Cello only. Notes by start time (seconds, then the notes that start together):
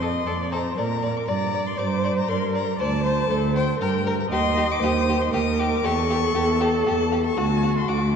Already playing: F2
0.27 F2
0.78 A#2
1.28 G2
1.79 G2
2.29 G2
2.80 D2
3.30 D2
3.81 G2
4.31 D#2
4.82 D#2
5.33 D#2
5.84 E2
6.35 E2
6.87 E2
7.38 D2
7.89 D2